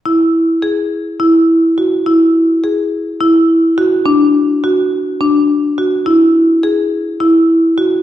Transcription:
\new Staff \with { instrumentName = "Marimba" } { \time 7/8 \key e \mixolydian \tempo 4 = 105 e'4 gis'4 e'4 fis'8 | e'4 gis'4 e'4 fis'8 | d'4 fis'4 d'4 fis'8 | e'4 gis'4 e'4 fis'8 | }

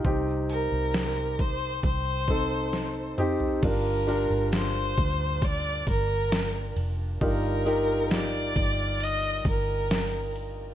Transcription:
<<
  \new Staff \with { instrumentName = "Violin" } { \time 4/4 \key g \minor \tempo 4 = 67 r8 bes'4 c''8 c''4. r8 | bes'4 c''4 d''8 bes'4 r8 | bes'4 d''4 ees''8 bes'4 r8 | }
  \new Staff \with { instrumentName = "Grand piano" } { \time 4/4 \key g \minor <c' ees' g'>2 r8 <c' ees' a'>4 <c' ees' g'>8 | <d' f' g' bes'>8 <d' f' g' bes'>2 r4. | <ees' f' g' bes'>8 <ees' f' g' bes'>2 r4. | }
  \new Staff \with { instrumentName = "Grand piano" } { \clef bass \time 4/4 \key g \minor c4. r2 r8 | g,4. r2 r8 | g,4. r2 r8 | }
  \new Staff \with { instrumentName = "Fingered electric bass" } { \clef bass \time 4/4 \key g \minor c,8. c,4~ c,16 c,4. r8 | g,,8. g,,8. d,4 g,,4 f,,8 | g,,4. g,,4 g,,4. | }
  \new DrumStaff \with { instrumentName = "Drums" } \drummode { \time 4/4 <hh bd>8 hh8 <hh sn>16 hh16 <hh bd>8 <hh bd>16 hh16 <hh bd>8 <hh sn>8 <hh toml>16 tomfh16 | <cymc bd cymr>8 cymr8 <cymr sn>8 <bd cymr>8 <bd cymr>16 cymr16 <bd cymr>8 <cymr sn>8 cymr8 | <bd cymr>8 cymr8 <cymr sn>8 <bd cymr>8 cymr16 cymr16 <bd cymr>8 <cymr sn>8 cymr8 | }
>>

